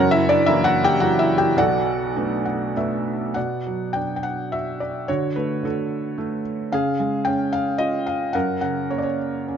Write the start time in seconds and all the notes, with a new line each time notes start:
Already playing: F#1 F#2 F#4 A#4 C#5
0.11 E4 E5
0.29 D4 D5
0.46 E3 F#3 A#3 E4 E5
0.64 F#4 F#5
0.84 G4 G5
1.00 E3 F#3 A#3 F#4 F#5
1.19 E4 E5
1.38 G4 G5
1.57 B1 B2 F#4 A4 D5 F#5
2.16 A3 B3 D4
2.45 F#5
2.76 A3 B3 D4 E5
3.34 B2 D5 F#5
3.67 F#3
3.93 D4 G5
4.16 G5
4.23 F#5
4.52 F#4 E5
4.80 D5
5.08 D3 F#4 C#5
5.36 A3 B4
5.63 D3 F#4 A4
6.18 A3
6.72 C#3 G#4 F5
7.00 G#3
7.25 C#4 G5
7.53 F5
7.78 F4 D#5
8.07 F5
8.33 F#2 A#4 F#5
8.61 C#3 F#5
8.90 A#3 C#5
8.98 D5
9.03 C#5
9.48 C#4